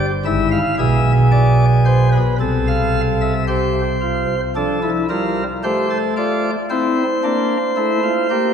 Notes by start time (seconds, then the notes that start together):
Already playing: G4
0.25 G#1 G#2 E4 E5
0.51 F5
0.78 B1 B2 G#4 E5
1.31 D5
1.85 C5
2.12 B4
2.40 C2 C3 A4
2.67 F5
3.21 E5
3.48 G4 C5
4.01 F4
4.55 F3 D4 A4
4.83 E4
5.10 G3 F4 A#4
5.63 A3 G4 C5
5.90 A4
6.17 F4 D5
6.70 C4 E4 C5
7.24 A#3 D4
7.76 A3 E4
8.03 F4
8.30 A#3 G4